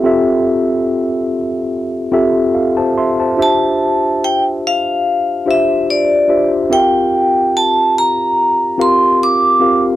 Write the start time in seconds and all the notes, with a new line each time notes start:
Already playing: C4 F4 G4 A4 E5 F5
0.04 C4 F4 G4 A4 E5
2.12 C4 F4 G4 A4 E5
2.55 A4 F5
2.77 C5 A5
2.98 E5 C6
3.20 C5 A5
3.37 D4 F4 G4 C5 E5
3.42 A5
4.24 G5
4.67 F5
5.46 D4 F4 G4 C5 E5
5.51 E5
5.90 D5
6.28 D4 F4 G4 C5 E5
6.70 C4 F4 G4 A#4 E5 G5
6.79 F5
7.57 A5
7.98 A#5
8.78 C4 F4 G4 A#4 F5 C6
9.23 D6
9.60 C4 F4 G4 A#4 F5